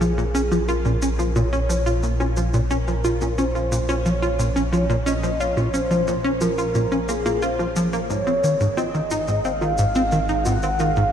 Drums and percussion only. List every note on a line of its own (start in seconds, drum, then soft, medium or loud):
0.01 high conga soft
0.01 shaker medium
0.18 shaker soft
0.35 shaker medium
0.52 high conga medium
0.52 shaker soft
0.69 shaker medium
0.85 high conga soft
0.85 shaker soft
1.02 shaker medium
1.19 shaker medium
1.36 high conga medium
1.36 shaker medium
1.53 shaker soft
1.70 high conga soft
1.70 shaker medium
1.87 shaker medium
2.03 shaker medium
2.20 high conga medium
2.20 shaker soft
2.37 shaker medium
2.54 high conga soft
2.54 shaker medium
2.71 shaker medium
2.88 shaker soft
3.04 high conga medium
3.04 shaker medium
3.21 shaker medium
3.38 high conga soft
3.38 shaker medium
3.55 shaker soft
3.72 shaker medium
3.89 high conga medium
3.89 shaker medium
4.06 shaker soft
4.23 high conga soft
4.23 shaker soft
4.39 shaker medium
4.56 shaker medium
4.73 high conga medium
4.73 shaker medium
4.90 shaker soft
5.07 high conga soft
5.07 shaker medium
5.24 shaker medium
5.41 shaker medium
5.57 high conga medium
5.57 shaker soft
5.74 shaker medium
5.91 high conga soft
5.91 shaker medium
6.08 shaker medium
6.24 shaker soft
6.41 high conga medium
6.41 shaker medium
6.58 shaker medium
6.75 high conga soft
6.75 shaker medium
6.92 shaker soft
7.09 shaker medium
7.26 high conga medium
7.26 shaker medium
7.42 shaker medium
7.59 high conga soft
7.59 shaker soft
7.76 shaker medium
7.93 shaker medium
8.10 shaker medium
8.27 high conga soft
8.27 shaker soft
8.44 shaker medium
8.61 shaker soft
8.78 high conga medium
8.78 shaker medium
8.94 shaker soft
9.11 high conga soft
9.11 shaker medium
9.28 shaker soft
9.45 shaker soft
9.61 high conga medium
9.61 shaker soft
9.78 shaker medium
9.95 high conga soft
9.95 shaker medium
10.12 shaker medium
10.29 shaker soft
10.45 high conga medium
10.45 shaker medium
10.63 shaker medium
10.79 high conga soft
10.79 shaker medium
10.96 shaker soft